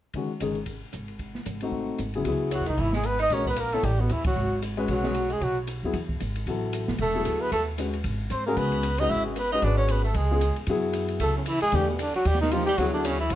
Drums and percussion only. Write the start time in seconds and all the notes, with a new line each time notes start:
0.14 kick, ride
0.40 hi-hat pedal, ride
0.55 ride
0.66 kick, ride
0.93 hi-hat pedal, ride
1.08 ride
1.19 kick, ride
1.35 snare
1.46 hi-hat pedal, ride
1.60 ride
1.72 kick
1.98 hi-hat pedal, ride
2.14 ride
2.25 kick, ride
2.51 hi-hat pedal, ride
2.66 ride
2.78 kick, ride
2.93 snare
3.03 hi-hat pedal, ride
3.19 ride
3.30 kick, ride
3.46 kick
3.56 hi-hat pedal, ride
3.72 ride
3.83 kick, ride
4.09 hi-hat pedal, ride
4.24 kick, ride
4.62 hi-hat pedal, ride
4.77 ride
4.88 kick, ride
5.03 snare
5.14 hi-hat pedal, ride
5.30 ride
5.41 kick, ride
5.67 hi-hat pedal, ride
5.93 kick, ride
6.09 kick
6.20 hi-hat pedal, ride
6.36 ride
6.47 kick, ride
6.73 hi-hat pedal, ride
6.88 snare
6.98 kick, ride
7.25 hi-hat pedal, ride
7.52 kick, ride
7.78 hi-hat pedal, ride
7.93 ride
8.04 kick, ride
8.30 hi-hat pedal, ride
8.57 kick, ride
8.72 ride
8.83 hi-hat pedal, ride
8.98 ride
9.10 kick
9.36 hi-hat pedal, ride
9.62 kick, ride
9.88 hi-hat pedal, ride
10.14 kick, ride
10.41 hi-hat pedal, ride
10.56 ride
10.67 kick, ride
10.93 hi-hat pedal, ride
11.08 ride
11.20 kick, ride
11.46 hi-hat pedal, ride
11.60 ride
11.72 kick, ride
11.99 hi-hat pedal, ride
12.14 ride
12.25 kick, ride
12.34 snare
12.43 snare
12.52 hi-hat pedal, ride
12.67 ride
12.78 kick, ride
13.05 hi-hat pedal, ride
13.19 ride
13.30 kick, ride